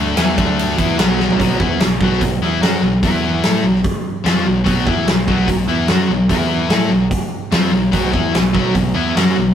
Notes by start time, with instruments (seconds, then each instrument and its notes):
Already playing: picked electric bass D2, distorted electric guitar D3 A3 D4
0.17 picked electric bass E2, distorted electric guitar E3 B3 E4, snare, ride
0.37 picked electric bass D2, distorted electric guitar D3 A3 D4, kick, ride
0.59 ride
0.78 picked electric bass E2, distorted electric guitar E3 B3 E4, kick, ride
0.98 picked electric bass B1, distorted electric guitar B2 F#3 B3, snare, ride
1.20 snare
1.30 floor tom
1.40 picked electric bass B1, distorted electric guitar B2 F#3 B3, kick, open hi-hat
1.60 picked electric bass E2, distorted electric guitar E3 B3 E4, kick
1.80 picked electric bass B1, distorted electric guitar B2 F#3, snare, open hi-hat
2.00 picked electric bass B1, distorted electric guitar B2 F#3 B3, kick
2.12 snare
2.21 picked electric bass B1, distorted electric guitar B2 F#3, kick, open hi-hat
2.42 picked electric bass E2, distorted electric guitar E3 B3 E4
2.62 picked electric bass F#2, distorted electric guitar F#3 C#4 F#4, snare, open hi-hat
2.82 picked electric bass B1, distorted electric guitar B2 F#3
3.02 picked electric bass E2, distorted electric guitar E3 B3 E4, kick, open hi-hat
3.43 picked electric bass A2, distorted electric guitar A3 E4 A4, snare, open hi-hat
3.64 picked electric bass B1, distorted electric guitar B2 F#3
3.75 snare
3.84 kick, open hi-hat
4.24 picked electric bass F2, distorted electric guitar F3 C4 F4, snare, open hi-hat
4.45 picked electric bass B1, distorted electric guitar B2 F#3
4.64 picked electric bass B1, distorted electric guitar B2 F#3 B3, kick, open hi-hat
4.86 picked electric bass E2, distorted electric guitar E3 B3 E4, kick
5.06 picked electric bass B1, distorted electric guitar B2 F#3, snare, open hi-hat
5.27 picked electric bass B1, distorted electric guitar B2 F#3 B3, kick
5.47 picked electric bass B1, distorted electric guitar B2 F#3, kick, open hi-hat
5.68 picked electric bass E2, distorted electric guitar E3 B3 E4
5.88 picked electric bass F#2, distorted electric guitar F#3 C#4 F#4, snare, open hi-hat
6.09 picked electric bass B1, distorted electric guitar B2 F#3
6.29 picked electric bass E2, distorted electric guitar E3 B3 E4, kick, open hi-hat
6.70 picked electric bass A2, distorted electric guitar A3 E4 A4, snare, open hi-hat
6.90 picked electric bass B1, distorted electric guitar B2 F#3
7.11 kick, open hi-hat
7.52 picked electric bass F2, distorted electric guitar F3 C4 F4, snare, open hi-hat
7.72 picked electric bass B1, distorted electric guitar B2 F#3
7.92 picked electric bass B1, distorted electric guitar B2 F#3 B3, kick, open hi-hat
8.12 picked electric bass E2, distorted electric guitar E3 B3 E4, kick
8.34 picked electric bass B1, distorted electric guitar B2 F#3, snare, open hi-hat
8.53 picked electric bass B1, distorted electric guitar B2 F#3 B3, kick
8.75 picked electric bass B1, distorted electric guitar B2 F#3, kick, open hi-hat
8.94 picked electric bass E2, distorted electric guitar E3 B3 E4
9.16 picked electric bass F#2, distorted electric guitar F#3 C#4 F#4, snare, open hi-hat
9.37 picked electric bass B1, distorted electric guitar B2 F#3